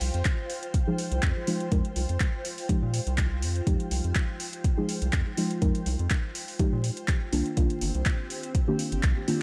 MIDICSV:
0, 0, Header, 1, 5, 480
1, 0, Start_track
1, 0, Tempo, 487805
1, 1690, Time_signature, 4, 2, 24, 8
1, 9276, End_track
2, 0, Start_track
2, 0, Title_t, "Ambient pad"
2, 0, Program_c, 0, 92
2, 0, Note_on_c, 0, 65, 72
2, 0, Note_on_c, 0, 72, 84
2, 0, Note_on_c, 0, 79, 69
2, 7209, Note_on_c, 0, 60, 86
2, 7354, Note_on_c, 0, 67, 70
2, 7951, Note_off_c, 0, 79, 0
2, 8305, Note_on_c, 0, 74, 76
2, 8533, Note_off_c, 0, 65, 0
2, 8901, Note_off_c, 0, 72, 0
2, 9276, Note_off_c, 0, 60, 0
2, 9276, Note_off_c, 0, 67, 0
2, 9276, Note_off_c, 0, 74, 0
2, 9276, End_track
3, 0, Start_track
3, 0, Title_t, "Synth stab"
3, 0, Program_c, 1, 62
3, 0, Note_on_c, 1, 53, 77
3, 0, Note_on_c, 1, 56, 72
3, 0, Note_on_c, 1, 63, 71
3, 0, Note_on_c, 1, 67, 86
3, 828, Note_off_c, 1, 53, 0
3, 828, Note_off_c, 1, 56, 0
3, 828, Note_off_c, 1, 63, 0
3, 828, Note_off_c, 1, 67, 0
3, 858, Note_on_c, 1, 56, 79
3, 859, Note_on_c, 1, 53, 88
3, 859, Note_on_c, 1, 63, 80
3, 859, Note_on_c, 1, 68, 93
3, 1423, Note_off_c, 1, 53, 0
3, 1423, Note_off_c, 1, 56, 0
3, 1423, Note_off_c, 1, 63, 0
3, 1423, Note_off_c, 1, 68, 0
3, 1450, Note_on_c, 1, 53, 89
3, 1450, Note_on_c, 1, 56, 82
3, 1450, Note_on_c, 1, 63, 84
3, 1450, Note_on_c, 1, 65, 97
3, 1663, Note_off_c, 1, 53, 0
3, 1663, Note_off_c, 1, 56, 0
3, 1663, Note_off_c, 1, 63, 0
3, 1663, Note_off_c, 1, 65, 0
3, 1690, Note_on_c, 1, 53, 97
3, 1690, Note_on_c, 1, 56, 92
3, 1690, Note_on_c, 1, 63, 89
3, 1690, Note_on_c, 1, 70, 106
3, 1858, Note_off_c, 1, 53, 0
3, 1858, Note_off_c, 1, 56, 0
3, 1858, Note_off_c, 1, 63, 0
3, 1858, Note_off_c, 1, 70, 0
3, 2649, Note_on_c, 1, 53, 85
3, 2649, Note_on_c, 1, 56, 79
3, 2649, Note_on_c, 1, 63, 75
3, 2649, Note_on_c, 1, 67, 91
3, 2818, Note_off_c, 1, 53, 0
3, 2818, Note_off_c, 1, 56, 0
3, 2818, Note_off_c, 1, 63, 0
3, 2818, Note_off_c, 1, 67, 0
3, 3609, Note_on_c, 1, 53, 78
3, 3609, Note_on_c, 1, 56, 69
3, 3610, Note_on_c, 1, 63, 71
3, 3610, Note_on_c, 1, 67, 85
3, 4668, Note_off_c, 1, 53, 0
3, 4668, Note_off_c, 1, 56, 0
3, 4668, Note_off_c, 1, 63, 0
3, 4668, Note_off_c, 1, 67, 0
3, 4698, Note_on_c, 1, 53, 85
3, 4698, Note_on_c, 1, 56, 80
3, 4698, Note_on_c, 1, 63, 81
3, 4698, Note_on_c, 1, 68, 94
3, 5262, Note_off_c, 1, 53, 0
3, 5263, Note_off_c, 1, 56, 0
3, 5263, Note_off_c, 1, 63, 0
3, 5263, Note_off_c, 1, 68, 0
3, 5289, Note_on_c, 1, 53, 90
3, 5289, Note_on_c, 1, 56, 79
3, 5289, Note_on_c, 1, 63, 79
3, 5289, Note_on_c, 1, 65, 98
3, 5503, Note_off_c, 1, 53, 0
3, 5503, Note_off_c, 1, 56, 0
3, 5503, Note_off_c, 1, 63, 0
3, 5503, Note_off_c, 1, 65, 0
3, 5529, Note_on_c, 1, 53, 97
3, 5529, Note_on_c, 1, 56, 88
3, 5529, Note_on_c, 1, 63, 91
3, 5529, Note_on_c, 1, 70, 111
3, 5698, Note_off_c, 1, 53, 0
3, 5698, Note_off_c, 1, 56, 0
3, 5698, Note_off_c, 1, 63, 0
3, 5698, Note_off_c, 1, 70, 0
3, 6489, Note_on_c, 1, 53, 86
3, 6489, Note_on_c, 1, 56, 77
3, 6490, Note_on_c, 1, 63, 75
3, 6490, Note_on_c, 1, 67, 95
3, 6658, Note_off_c, 1, 53, 0
3, 6658, Note_off_c, 1, 56, 0
3, 6658, Note_off_c, 1, 63, 0
3, 6658, Note_off_c, 1, 67, 0
3, 7209, Note_on_c, 1, 51, 76
3, 7210, Note_on_c, 1, 58, 72
3, 7210, Note_on_c, 1, 62, 72
3, 7210, Note_on_c, 1, 65, 87
3, 7423, Note_off_c, 1, 51, 0
3, 7423, Note_off_c, 1, 58, 0
3, 7423, Note_off_c, 1, 62, 0
3, 7423, Note_off_c, 1, 65, 0
3, 7450, Note_on_c, 1, 51, 77
3, 7450, Note_on_c, 1, 58, 71
3, 7450, Note_on_c, 1, 62, 72
3, 7450, Note_on_c, 1, 65, 87
3, 8508, Note_off_c, 1, 51, 0
3, 8508, Note_off_c, 1, 58, 0
3, 8508, Note_off_c, 1, 62, 0
3, 8508, Note_off_c, 1, 65, 0
3, 8538, Note_on_c, 1, 51, 88
3, 8539, Note_on_c, 1, 58, 79
3, 8539, Note_on_c, 1, 62, 77
3, 8539, Note_on_c, 1, 67, 97
3, 9103, Note_off_c, 1, 51, 0
3, 9103, Note_off_c, 1, 58, 0
3, 9103, Note_off_c, 1, 62, 0
3, 9103, Note_off_c, 1, 67, 0
3, 9129, Note_on_c, 1, 51, 90
3, 9129, Note_on_c, 1, 58, 79
3, 9130, Note_on_c, 1, 62, 82
3, 9130, Note_on_c, 1, 65, 98
3, 9276, Note_off_c, 1, 51, 0
3, 9276, Note_off_c, 1, 58, 0
3, 9276, Note_off_c, 1, 62, 0
3, 9276, Note_off_c, 1, 65, 0
3, 9276, End_track
4, 0, Start_track
4, 0, Title_t, "Analog synth bass"
4, 0, Program_c, 2, 38
4, 10, Note_on_c, 2, 36, 97
4, 107, Note_off_c, 2, 36, 0
4, 139, Note_on_c, 2, 41, 77
4, 223, Note_off_c, 2, 41, 0
4, 1099, Note_on_c, 2, 36, 79
4, 1182, Note_off_c, 2, 36, 0
4, 1209, Note_on_c, 2, 41, 100
4, 1307, Note_off_c, 2, 41, 0
4, 1690, Note_on_c, 2, 41, 99
4, 1787, Note_off_c, 2, 41, 0
4, 1930, Note_on_c, 2, 36, 100
4, 2027, Note_off_c, 2, 36, 0
4, 2059, Note_on_c, 2, 41, 80
4, 2143, Note_off_c, 2, 41, 0
4, 2778, Note_on_c, 2, 46, 81
4, 2955, Note_off_c, 2, 46, 0
4, 3018, Note_on_c, 2, 36, 88
4, 3369, Note_on_c, 2, 41, 80
4, 3384, Note_off_c, 2, 36, 0
4, 3555, Note_off_c, 2, 41, 0
4, 3609, Note_on_c, 2, 41, 94
4, 3707, Note_off_c, 2, 41, 0
4, 3849, Note_on_c, 2, 36, 103
4, 3947, Note_off_c, 2, 36, 0
4, 3979, Note_on_c, 2, 41, 81
4, 4062, Note_off_c, 2, 41, 0
4, 4939, Note_on_c, 2, 36, 78
4, 5022, Note_off_c, 2, 36, 0
4, 5049, Note_on_c, 2, 41, 102
4, 5147, Note_off_c, 2, 41, 0
4, 5529, Note_on_c, 2, 41, 96
4, 5627, Note_off_c, 2, 41, 0
4, 5769, Note_on_c, 2, 36, 100
4, 5867, Note_off_c, 2, 36, 0
4, 5898, Note_on_c, 2, 41, 78
4, 5982, Note_off_c, 2, 41, 0
4, 6619, Note_on_c, 2, 46, 80
4, 6795, Note_off_c, 2, 46, 0
4, 7210, Note_on_c, 2, 36, 85
4, 7307, Note_off_c, 2, 36, 0
4, 7449, Note_on_c, 2, 36, 97
4, 7547, Note_off_c, 2, 36, 0
4, 7690, Note_on_c, 2, 31, 101
4, 7787, Note_off_c, 2, 31, 0
4, 7819, Note_on_c, 2, 36, 78
4, 7902, Note_off_c, 2, 36, 0
4, 8779, Note_on_c, 2, 31, 76
4, 8862, Note_off_c, 2, 31, 0
4, 8890, Note_on_c, 2, 36, 99
4, 8987, Note_off_c, 2, 36, 0
4, 9276, End_track
5, 0, Start_track
5, 0, Title_t, "Drums"
5, 9, Note_on_c, 9, 46, 100
5, 107, Note_off_c, 9, 46, 0
5, 138, Note_on_c, 9, 42, 36
5, 236, Note_off_c, 9, 42, 0
5, 245, Note_on_c, 9, 39, 116
5, 249, Note_on_c, 9, 42, 81
5, 250, Note_on_c, 9, 36, 112
5, 344, Note_off_c, 9, 39, 0
5, 347, Note_off_c, 9, 42, 0
5, 348, Note_off_c, 9, 36, 0
5, 489, Note_on_c, 9, 46, 97
5, 587, Note_off_c, 9, 46, 0
5, 618, Note_on_c, 9, 42, 55
5, 716, Note_off_c, 9, 42, 0
5, 729, Note_on_c, 9, 42, 80
5, 730, Note_on_c, 9, 36, 115
5, 827, Note_off_c, 9, 42, 0
5, 828, Note_off_c, 9, 36, 0
5, 969, Note_on_c, 9, 46, 101
5, 1067, Note_off_c, 9, 46, 0
5, 1098, Note_on_c, 9, 42, 53
5, 1196, Note_off_c, 9, 42, 0
5, 1205, Note_on_c, 9, 39, 121
5, 1208, Note_on_c, 9, 42, 83
5, 1210, Note_on_c, 9, 36, 116
5, 1303, Note_off_c, 9, 39, 0
5, 1307, Note_off_c, 9, 42, 0
5, 1308, Note_off_c, 9, 36, 0
5, 1449, Note_on_c, 9, 46, 98
5, 1547, Note_off_c, 9, 46, 0
5, 1578, Note_on_c, 9, 42, 37
5, 1676, Note_off_c, 9, 42, 0
5, 1689, Note_on_c, 9, 36, 114
5, 1689, Note_on_c, 9, 42, 75
5, 1787, Note_off_c, 9, 42, 0
5, 1788, Note_off_c, 9, 36, 0
5, 1818, Note_on_c, 9, 42, 36
5, 1917, Note_off_c, 9, 42, 0
5, 1928, Note_on_c, 9, 46, 104
5, 2027, Note_off_c, 9, 46, 0
5, 2058, Note_on_c, 9, 42, 35
5, 2157, Note_off_c, 9, 42, 0
5, 2166, Note_on_c, 9, 39, 119
5, 2169, Note_on_c, 9, 36, 115
5, 2169, Note_on_c, 9, 42, 79
5, 2264, Note_off_c, 9, 39, 0
5, 2267, Note_off_c, 9, 42, 0
5, 2268, Note_off_c, 9, 36, 0
5, 2409, Note_on_c, 9, 46, 102
5, 2508, Note_off_c, 9, 46, 0
5, 2539, Note_on_c, 9, 46, 63
5, 2637, Note_off_c, 9, 46, 0
5, 2649, Note_on_c, 9, 36, 117
5, 2650, Note_on_c, 9, 42, 77
5, 2748, Note_off_c, 9, 36, 0
5, 2748, Note_off_c, 9, 42, 0
5, 2890, Note_on_c, 9, 46, 108
5, 2988, Note_off_c, 9, 46, 0
5, 3019, Note_on_c, 9, 42, 51
5, 3117, Note_off_c, 9, 42, 0
5, 3126, Note_on_c, 9, 39, 122
5, 3129, Note_on_c, 9, 36, 121
5, 3130, Note_on_c, 9, 42, 78
5, 3225, Note_off_c, 9, 39, 0
5, 3228, Note_off_c, 9, 36, 0
5, 3228, Note_off_c, 9, 42, 0
5, 3369, Note_on_c, 9, 46, 103
5, 3468, Note_off_c, 9, 46, 0
5, 3499, Note_on_c, 9, 42, 36
5, 3597, Note_off_c, 9, 42, 0
5, 3609, Note_on_c, 9, 36, 120
5, 3610, Note_on_c, 9, 42, 73
5, 3708, Note_off_c, 9, 36, 0
5, 3708, Note_off_c, 9, 42, 0
5, 3739, Note_on_c, 9, 42, 35
5, 3837, Note_off_c, 9, 42, 0
5, 3850, Note_on_c, 9, 46, 107
5, 3948, Note_off_c, 9, 46, 0
5, 3979, Note_on_c, 9, 42, 34
5, 4077, Note_off_c, 9, 42, 0
5, 4085, Note_on_c, 9, 39, 119
5, 4089, Note_on_c, 9, 36, 118
5, 4089, Note_on_c, 9, 42, 75
5, 4184, Note_off_c, 9, 39, 0
5, 4187, Note_off_c, 9, 42, 0
5, 4188, Note_off_c, 9, 36, 0
5, 4329, Note_on_c, 9, 46, 105
5, 4427, Note_off_c, 9, 46, 0
5, 4458, Note_on_c, 9, 42, 52
5, 4557, Note_off_c, 9, 42, 0
5, 4569, Note_on_c, 9, 36, 122
5, 4569, Note_on_c, 9, 42, 75
5, 4667, Note_off_c, 9, 42, 0
5, 4668, Note_off_c, 9, 36, 0
5, 4809, Note_on_c, 9, 46, 112
5, 4907, Note_off_c, 9, 46, 0
5, 4938, Note_on_c, 9, 42, 49
5, 5036, Note_off_c, 9, 42, 0
5, 5045, Note_on_c, 9, 39, 120
5, 5048, Note_on_c, 9, 42, 77
5, 5049, Note_on_c, 9, 36, 123
5, 5143, Note_off_c, 9, 39, 0
5, 5147, Note_off_c, 9, 36, 0
5, 5147, Note_off_c, 9, 42, 0
5, 5288, Note_on_c, 9, 46, 107
5, 5387, Note_off_c, 9, 46, 0
5, 5418, Note_on_c, 9, 42, 36
5, 5516, Note_off_c, 9, 42, 0
5, 5528, Note_on_c, 9, 42, 71
5, 5529, Note_on_c, 9, 36, 118
5, 5627, Note_off_c, 9, 36, 0
5, 5627, Note_off_c, 9, 42, 0
5, 5657, Note_on_c, 9, 42, 35
5, 5756, Note_off_c, 9, 42, 0
5, 5768, Note_on_c, 9, 46, 103
5, 5867, Note_off_c, 9, 46, 0
5, 5898, Note_on_c, 9, 42, 32
5, 5996, Note_off_c, 9, 42, 0
5, 6005, Note_on_c, 9, 39, 111
5, 6008, Note_on_c, 9, 42, 73
5, 6009, Note_on_c, 9, 36, 114
5, 6103, Note_off_c, 9, 39, 0
5, 6107, Note_off_c, 9, 36, 0
5, 6107, Note_off_c, 9, 42, 0
5, 6249, Note_on_c, 9, 46, 104
5, 6347, Note_off_c, 9, 46, 0
5, 6378, Note_on_c, 9, 46, 65
5, 6476, Note_off_c, 9, 46, 0
5, 6488, Note_on_c, 9, 42, 74
5, 6489, Note_on_c, 9, 36, 117
5, 6587, Note_off_c, 9, 36, 0
5, 6587, Note_off_c, 9, 42, 0
5, 6729, Note_on_c, 9, 46, 110
5, 6827, Note_off_c, 9, 46, 0
5, 6857, Note_on_c, 9, 42, 49
5, 6956, Note_off_c, 9, 42, 0
5, 6965, Note_on_c, 9, 39, 117
5, 6968, Note_on_c, 9, 42, 74
5, 6969, Note_on_c, 9, 36, 122
5, 7064, Note_off_c, 9, 39, 0
5, 7067, Note_off_c, 9, 42, 0
5, 7068, Note_off_c, 9, 36, 0
5, 7208, Note_on_c, 9, 46, 104
5, 7307, Note_off_c, 9, 46, 0
5, 7338, Note_on_c, 9, 42, 34
5, 7436, Note_off_c, 9, 42, 0
5, 7448, Note_on_c, 9, 42, 72
5, 7450, Note_on_c, 9, 36, 115
5, 7547, Note_off_c, 9, 42, 0
5, 7548, Note_off_c, 9, 36, 0
5, 7578, Note_on_c, 9, 42, 34
5, 7676, Note_off_c, 9, 42, 0
5, 7689, Note_on_c, 9, 46, 102
5, 7788, Note_off_c, 9, 46, 0
5, 7819, Note_on_c, 9, 42, 33
5, 7917, Note_off_c, 9, 42, 0
5, 7927, Note_on_c, 9, 39, 111
5, 7930, Note_on_c, 9, 36, 113
5, 7930, Note_on_c, 9, 42, 75
5, 8025, Note_off_c, 9, 39, 0
5, 8028, Note_off_c, 9, 36, 0
5, 8028, Note_off_c, 9, 42, 0
5, 8169, Note_on_c, 9, 46, 101
5, 8268, Note_off_c, 9, 46, 0
5, 8299, Note_on_c, 9, 42, 52
5, 8397, Note_off_c, 9, 42, 0
5, 8410, Note_on_c, 9, 36, 114
5, 8410, Note_on_c, 9, 42, 75
5, 8508, Note_off_c, 9, 36, 0
5, 8508, Note_off_c, 9, 42, 0
5, 8649, Note_on_c, 9, 46, 106
5, 8748, Note_off_c, 9, 46, 0
5, 8779, Note_on_c, 9, 42, 49
5, 8877, Note_off_c, 9, 42, 0
5, 8886, Note_on_c, 9, 39, 111
5, 8889, Note_on_c, 9, 42, 77
5, 8890, Note_on_c, 9, 36, 115
5, 8984, Note_off_c, 9, 39, 0
5, 8987, Note_off_c, 9, 42, 0
5, 8988, Note_off_c, 9, 36, 0
5, 9129, Note_on_c, 9, 46, 100
5, 9228, Note_off_c, 9, 46, 0
5, 9276, End_track
0, 0, End_of_file